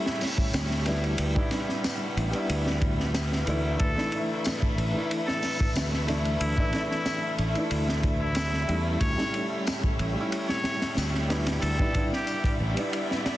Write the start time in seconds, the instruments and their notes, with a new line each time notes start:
Already playing: felt piano G3 A3 C#4 E4, violin section A3 G4 C#5 E5
0.06 snare
0.21 snare, open hi-hat
0.38 kick
0.53 fingered electric bass D2, snare, ride, tambourine
0.71 snare
0.85 felt piano G3 B3 D4 E4, snare, ride
1.04 ride
1.18 fingered electric bass D2, violin section B3 B4 E5, ride
1.34 felt piano G3 B3 D4 E4, kick
1.48 felt piano G3 B3, snare, ride
1.53 felt piano D4 E4
1.69 snare
1.84 snare, ride, tambourine
2.17 fingered electric bass A1, ride
2.30 felt piano G3 B3, ride
2.35 felt piano D4 E4
2.49 fingered electric bass D2, ride
2.67 snare
2.81 kick, ride
3.00 snare
3.14 snare, ride, tambourine
3.32 snare
3.46 fingered electric bass D2, felt piano E3 A3 D4 E4, ride
3.80 fingered electric bass D2, violin section A3 E4, muted trumpet A4, kick, ride
3.95 felt piano E3 A3 D4 E4, snare
4.09 felt piano E3 A3, ride
4.14 felt piano D4 E4
4.44 snare, ride, tambourine
4.62 kick
4.78 fingered electric bass A1, ride
4.91 felt piano E3 A3
4.96 felt piano D4 E4
5.11 ride
5.27 muted trumpet A4, snare
5.42 snare, open hi-hat
5.60 kick
5.75 fingered electric bass D2, snare, ride, tambourine
5.93 snare
6.06 felt piano E3 A3 D4 E4, snare, ride
6.25 ride
6.41 fingered electric bass D2, muted trumpet E4, ride
6.56 felt piano E3 A3 D4 E4, kick
6.70 felt piano E3 A3, snare, ride
6.75 felt piano D4 E4
6.90 muted trumpet E4, snare
7.06 snare, ride, tambourine
7.38 fingered electric bass A1, ride
7.53 felt piano E3 A3, ride
7.57 felt piano D4 E4
7.71 fingered electric bass D2, ride
7.89 snare
8.03 kick, ride
8.21 muted trumpet E4
8.35 snare, ride, tambourine
8.53 snare
8.68 fingered electric bass E2, felt piano G3 A3 C#4 E4, ride
9.01 fingered electric bass D2, violin section G4 C#5, muted trumpet C#5, kick, ride
9.17 felt piano G3 A3 C#4 E4, snare
9.31 felt piano G3 A3, ride
9.35 felt piano C#4 E4
9.67 snare, ride, tambourine
9.84 kick
9.99 fingered electric bass A1, ride
10.13 felt piano G3 A3
10.18 felt piano C#4 E4
10.32 ride
10.49 muted trumpet C#5, snare
10.64 snare, ride
10.82 snare, ride
10.97 fingered electric bass D2, snare, ride, tambourine
11.14 snare
11.28 felt piano G3 B3 D4 E4, snare, ride
11.47 snare, ride
11.62 fingered electric bass D2, violin section B3 D5 E5, muted trumpet A4, ride
11.78 felt piano G3 B3 D4 E4, kick
11.91 felt piano G3 B3, kick, ride
11.96 felt piano D4 E4
12.13 muted trumpet G4, snare
12.27 ride, tambourine
12.44 kick, ride
12.60 fingered electric bass A1
12.74 felt piano G3 B3, ride
12.79 felt piano D4 E4
12.93 ride
13.11 snare
13.26 snare, ride